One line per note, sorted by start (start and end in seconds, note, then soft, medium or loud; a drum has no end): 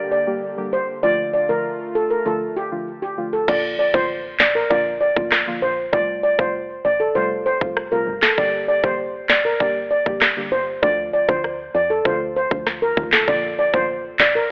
0.00 3.44 D3 medium
0.00 1.01 A#3 medium
0.00 1.01 G4 medium
0.12 0.22 D5 medium
0.26 0.45 D3 medium
0.26 0.46 G3 medium
0.26 0.46 A#3 medium
0.26 0.46 G4 medium
0.57 0.76 D3 medium
0.57 0.76 G3 medium
0.57 0.76 A#3 medium
0.57 0.76 G4 medium
0.73 0.84 C5 medium
1.03 1.45 D3 medium
1.03 1.46 F3 medium
1.03 3.46 A3 medium
1.03 1.46 A3 medium
1.03 3.46 F4 medium
1.03 1.46 F4 loud
1.03 1.14 D5 loud
1.33 1.44 D5 medium
1.49 1.68 D3 medium
1.49 1.68 F3 medium
1.49 1.68 A3 medium
1.49 1.68 F4 medium
1.49 1.60 A#4 medium
1.95 2.06 A4 medium
2.10 2.21 A#4 medium
2.25 2.44 D3 medium
2.25 2.44 F3 medium
2.25 2.45 A3 medium
2.25 2.45 F4 loud
2.25 2.36 A4 medium
2.57 2.67 G4 medium
2.71 2.90 D3 medium
2.71 2.90 F3 medium
2.71 2.90 A3 medium
2.71 2.91 F4 medium
3.02 3.13 G4 medium
3.17 3.36 D3 medium
3.17 3.36 F3 medium
3.17 3.36 A3 medium
3.17 3.36 F4 medium
3.33 3.44 A4 medium
3.48 3.75 A#1 loud
3.48 3.90 D3 medium
3.48 3.90 F3 medium
3.48 3.90 A#3 medium
3.48 3.90 F4 loud
3.48 3.59 D5 loud
3.48 kick loud
3.48 crash medium
3.79 3.90 D5 medium
3.93 4.35 A1 medium
3.93 4.13 D3 medium
3.93 4.13 F3 medium
3.93 4.13 A#3 medium
3.93 4.13 F4 medium
3.93 4.05 C5 medium
3.93 kick medium
4.40 4.67 A#1 medium
4.40 4.51 D5 medium
4.40 snare loud
4.40 clap medium
4.55 4.66 A#4 medium
4.70 5.11 A#1 loud
4.70 4.89 D3 loud
4.70 4.89 F3 medium
4.70 4.90 A#3 medium
4.70 4.90 F4 loud
4.70 4.81 D5 medium
4.70 kick medium
5.01 5.12 D5 medium
5.16 5.57 A1 medium
5.16 5.35 D3 medium
5.16 5.35 F3 medium
5.16 5.35 A#3 medium
5.16 5.35 F4 medium
5.16 kick medium
5.32 cross-stick medium
5.32 snare loud
5.32 clap medium
5.47 5.66 D3 medium
5.47 5.66 F3 medium
5.47 5.66 A#3 medium
5.47 5.66 F4 medium
5.62 5.90 A#1 medium
5.62 5.73 C5 medium
5.93 6.20 F1 loud
5.93 6.35 C3 medium
5.93 6.35 G3 medium
5.93 6.35 A3 medium
5.93 6.36 F4 loud
5.93 6.04 D5 medium
5.93 kick loud
6.23 6.34 D5 medium
6.39 6.80 F1 medium
6.39 6.58 C3 medium
6.39 6.58 G3 medium
6.39 6.58 A3 medium
6.39 6.58 F4 medium
6.39 6.50 C5 medium
6.39 kick medium
6.85 7.12 A1 medium
6.85 6.96 D5 medium
7.00 7.11 A4 medium
7.15 7.56 F1 loud
7.15 7.34 C3 loud
7.15 7.34 G3 medium
7.15 7.35 A3 medium
7.15 7.35 F4 loud
7.15 7.26 C5 medium
7.46 7.57 C5 medium
7.61 8.02 F1 loud
7.61 7.80 C3 medium
7.61 7.80 G3 medium
7.61 7.80 A3 medium
7.61 7.80 F4 medium
7.61 kick medium
7.77 cross-stick medium
7.92 8.11 C3 medium
7.92 8.11 G3 medium
7.92 8.11 A3 medium
7.92 8.11 F4 medium
7.92 8.03 A#4 medium
8.07 8.34 G1 loud
8.23 8.33 A4 medium
8.23 snare loud
8.23 clap medium
8.38 8.65 G1 loud
8.38 8.80 D3 medium
8.38 8.80 G3 medium
8.38 8.80 A#3 medium
8.38 8.80 G4 loud
8.38 8.49 D5 loud
8.38 kick loud
8.68 8.79 D5 medium
8.84 9.25 F1 loud
8.84 9.03 D3 medium
8.84 9.03 G3 medium
8.84 9.03 A#3 medium
8.84 9.03 G4 medium
8.84 8.95 C5 medium
8.84 kick medium
9.30 9.57 G1 medium
9.30 9.40 D5 medium
9.30 snare loud
9.30 clap medium
9.45 9.56 A#4 medium
9.60 10.01 G1 loud
9.60 9.79 D3 loud
9.60 9.79 G3 medium
9.60 9.79 A#3 medium
9.60 9.79 G4 loud
9.60 9.71 D5 medium
9.60 kick medium
9.91 10.02 D5 medium
10.06 10.47 F1 medium
10.06 10.25 D3 medium
10.06 10.25 G3 medium
10.06 10.25 A#3 medium
10.06 10.25 G4 medium
10.06 kick medium
10.22 cross-stick medium
10.22 snare loud
10.22 clap medium
10.37 10.56 D3 medium
10.37 10.56 G3 medium
10.37 10.56 A#3 medium
10.37 10.56 G4 medium
10.52 10.79 G1 medium
10.52 10.63 C5 medium
10.82 11.10 D2 loud
10.82 11.25 D3 medium
10.82 11.25 F3 medium
10.82 11.25 A3 medium
10.82 11.25 F4 loud
10.82 10.93 D5 medium
10.82 kick loud
11.13 11.24 D5 medium
11.28 11.70 D2 loud
11.28 11.47 D3 medium
11.28 11.48 F3 medium
11.28 11.48 A3 medium
11.28 11.48 F4 medium
11.28 11.39 C5 medium
11.28 kick loud
11.44 cross-stick medium
11.75 12.02 F2 medium
11.75 11.85 D5 medium
11.90 12.01 A4 medium
12.05 12.46 D2 loud
12.05 12.24 D3 loud
12.05 12.24 F3 medium
12.05 12.24 A3 medium
12.05 12.24 F4 loud
12.05 12.16 C5 medium
12.05 kick medium
12.36 12.47 C5 medium
12.51 12.92 D2 medium
12.51 12.93 D3 medium
12.51 12.93 F3 medium
12.51 12.93 A3 medium
12.51 12.94 F4 medium
12.51 kick medium
12.67 cross-stick medium
12.67 snare medium
12.82 12.93 A#4 medium
12.97 13.24 D#2 loud
12.97 13.25 D3 medium
12.97 13.25 F3 medium
12.97 13.25 A3 medium
12.97 13.25 F4 medium
12.97 kick medium
13.13 13.24 A4 medium
13.13 snare loud
13.13 clap medium
13.28 13.55 A#1 loud
13.28 13.70 D3 medium
13.28 13.70 F3 medium
13.28 13.70 A#3 medium
13.28 13.70 F4 loud
13.28 13.39 D5 loud
13.28 kick loud
13.59 13.70 D5 medium
13.74 14.14 A1 loud
13.74 13.92 D3 medium
13.74 13.93 F3 medium
13.74 13.93 A#3 medium
13.74 13.93 F4 medium
13.74 13.85 C5 medium
13.74 kick loud
14.20 14.47 A#1 medium
14.20 14.31 D5 medium
14.20 snare loud
14.20 clap loud
14.35 14.46 A#4 medium